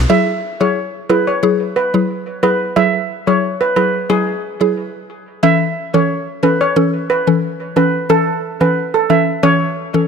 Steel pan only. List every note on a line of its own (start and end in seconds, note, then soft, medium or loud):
0.10 0.21 E5 medium
0.61 0.70 C#5 medium
1.10 1.21 B4 medium
1.27 1.37 C#5 medium
1.76 1.87 B4 medium
2.43 2.54 B4 medium
2.76 2.87 E5 medium
3.27 3.37 C#5 medium
3.61 3.70 B4 medium
3.76 3.87 B4 medium
4.10 4.58 G#4 loud
5.43 5.54 E5 medium
5.94 6.04 C#5 medium
6.43 6.54 B4 medium
6.61 6.71 C#5 medium
7.10 7.21 B4 medium
7.77 7.87 B4 medium
8.10 8.21 A4 medium
8.61 8.71 B4 medium
8.94 9.04 A4 medium
9.10 9.21 E5 medium
9.43 9.91 C#5 loud